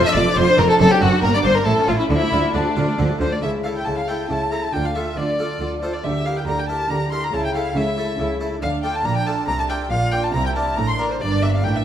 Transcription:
Already playing: F2 A#4
0.05 D4 E5 E6
0.15 F1 F2 F4 A4 D5 D6
0.27 D4
0.36 F1 F2 F4 G4 C5 C6
0.48 D4
0.58 F1 F2 F4 A4 A#4 A#5
0.69 D4 A4 A5
0.79 F#1 F#2 C4 A4 A5
0.91 D4 G4 G5
1.01 F#1 F#2 C4 D4 F#4 F#5
1.12 D4
1.22 G1 G2 A#3 A#4 A#5
1.34 D4 D5 D6
1.44 G1 G2 A#3 D4 C5 C6
1.55 D4 A#4 A#5
1.65 A1 A2 E4 A4 A5
1.78 C#4
1.88 A1 A2 A3 C#4 E4 F4 F5
1.99 C#4 E4 E5
2.09 D2 D3 F3 E4 E5
2.22 A3
2.32 D2 D3 F3 F4
2.44 A3
2.53 D2 D3 F3 D4 G4 D5
2.66 A3
2.76 D2 D3 F3 F4
2.87 A3
2.98 D2 D3 F3 E4
3.10 A3
3.20 D2 D3 F3 F4 C5
3.31 A3 D5
3.42 C#2 C#3 E4 A4 E5
3.64 A3 E4 A4 F5
3.74 G5
3.85 C#2 C#3 E4 A4 A5
3.97 F5
4.08 A3 E4 A4 G5
4.29 C#2 C#3 E4 A4 A5
4.51 A3 E4 A4 A#5
4.63 A5
4.72 D2 D3 F4 A4 G5
4.84 F5
4.94 A3 F4 A4 E5
5.16 D2 D3 F4 A4 D5
5.38 A3 F4 A4
5.60 D2 D3 F4 A4
5.81 A3 F4 A4 C5
5.93 D5
6.03 D2 D3 G4 A#4 E5
6.25 E4 G4 A#4 F5
6.36 G5
6.46 D2 D3 G4 A#4 A#5
6.58 G5
6.68 E4 G4 A#4 A5
6.90 D2 D3 G4 A#4 A#5
7.11 E4 G4 A#4 C6
7.22 A#5
7.33 C#2 C#3 E4 A4 A5
7.44 G5
7.54 A3 E4 A4 F5
7.76 C#2 C#3 E4 A4 E5
7.97 A3 E4 A4
8.19 C#2 C#3 E4 A4
8.40 A3 E4 A4
8.62 D2 D3 D4 A4 F5
8.83 A3 D4 F4 G5
8.94 A5
9.04 A#1 A#2 A#5
9.16 G5
9.26 A3 D4 F4 A5
9.47 C2 C3 A#5
9.58 A5
9.69 A3 D4 F4 G5
9.91 A#1 A#2 F4 A#4 F5
10.12 A#3 D4 F4 G5
10.23 A5
10.34 C2 C3 E4 A#5
10.45 G5
10.55 A#3 D4 F4 A5
10.77 A1 A2 D4 A#4 A#5
10.88 C6
10.98 A#3 D4 F4 A#4
11.09 C5
11.20 G1 G2 D4 A#4 D5
11.42 A#3 D4 G4 E5
11.53 F5
11.63 A1 A2 D4 A#4 G5
11.75 E5

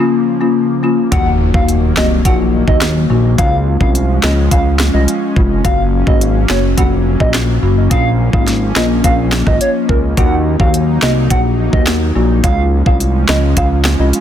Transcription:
Already playing: C#3 F3 A#3
0.00 A#3 C#4 F4
0.41 A#3 C#4 F4
0.83 A#3 C#4 F4
1.12 D#2 D#3 F#3 A#3 D#4 F#4 F#5, kick, closed hi-hat, impact
1.54 D#2 A#3 D#4 F#4 F5, kick
1.69 closed hi-hat
1.97 C2 A#3 D#4 F#4 D#5, snare, clap
2.25 A#1 A#3 D#4 F#4 F#5, kick, closed hi-hat
2.67 D#2 A#3 D#4 F#4 D#5, kick
2.81 snare, clap, closed hi-hat
3.10 A#1 A#3 D#4 F#4
3.38 C#2 F3 G#3 C#4 F4 F5, kick, closed hi-hat
3.80 C2 G#3 C#4 F4 F5, kick
3.95 closed hi-hat
4.23 C#2 G#3 C#4 F4 D#5, snare, clap
4.51 C#2 G#3 C#4 F4 F5, kick, closed hi-hat
4.79 snare, clap
4.94 C2 G#3 C#4 F4 D#5
5.08 closed hi-hat
5.36 F1 G#3 C#4 F4, kick
5.64 F#1 F#3 A#3 C#4 F#4 F5, kick, closed hi-hat
6.07 G#1 A#3 C#4 F#4 D#5, kick
6.21 closed hi-hat
6.49 F#1 A#3 C#4 F#4 C#5, snare, clap
6.77 F1 A#3 C#4 F#4 F#5, kick, closed hi-hat
7.20 A#1 A#3 C#4 F#4 D#5, kick
7.34 snare, clap, closed hi-hat
7.62 F#1 A#3 C#4 F#4
7.91 A#1 F3 A#3 C#4 F4 F5, kick, closed hi-hat
8.33 G#1 A#3 C#4 F4 F5, kick
8.48 snare, closed hi-hat
8.76 A#1 A#3 C#4 F4 D#5, snare, clap
9.04 A#1 A#3 C#4 F4 F5, kick, closed hi-hat
9.32 snare, clap
9.46 G#1 A#3 C#4 F4 D#5, kick, cross-stick
9.61 C#5, closed hi-hat
9.89 C#2 A#3 C#4 F4 A#4, kick
10.17 D#2 F#3 A#3 D#4 F#4 F#5, kick, closed hi-hat
10.60 D#2 A#3 D#4 F#4 F5, kick
10.74 closed hi-hat
11.02 C2 A#3 D#4 F#4 D#5, snare, clap
11.30 A#1 A#3 D#4 F#4 F#5, kick, closed hi-hat
11.73 D#2 A#3 D#4 F#4 D#5, kick
11.86 snare, clap, closed hi-hat
12.15 A#1 A#3 D#4 F#4
12.43 C#2 F3 G#3 C#4 F4 F5, kick, closed hi-hat
12.86 C2 G#3 C#4 F4 F5, kick
13.00 closed hi-hat
13.28 C#2 G#3 C#4 F4 D#5, snare, clap
13.57 C#2 G#3 C#4 F4 F5, kick, closed hi-hat
13.84 snare, clap
13.99 C2 G#3 C#4 F4 D#5
14.13 closed hi-hat

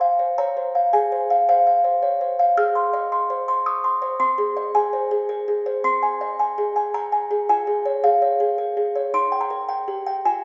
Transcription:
Already playing: F4 C5 C6
0.01 F5
0.19 C5
0.38 C#5 A#5
0.57 C5
0.75 F5
0.93 G#4 G#5
1.12 C5
1.30 F5
1.49 C5 F5
1.67 F5
1.84 C5
2.03 C#5
2.21 C5
2.39 F5
2.57 G#4 F6
2.75 C6
2.93 D#5
3.12 C6
3.30 C5
3.48 C6
3.66 C#6 D#6
3.84 C6
4.02 C5
4.20 C4 C6
4.38 G#4
4.57 D#5
4.75 G#4 G#5
4.93 C5
5.11 G#4
5.29 A#4
5.48 G#4
5.66 C5
5.84 C4 C6
6.03 G#5
6.21 D#5
6.39 G#5
6.58 G#4
6.76 G#5
6.94 A#5
7.12 G#5
7.31 G#4
7.49 F4 G#5
7.67 G#4
7.85 C#5
8.04 G#4 F5
8.22 C#5
8.40 G#4
8.58 A#4
8.77 G#4
8.96 C#5
9.14 D#4 C6
9.32 G5
9.41 A#5
9.50 A#4
9.69 G5
9.88 G4
10.06 G5
10.25 F4 G#5

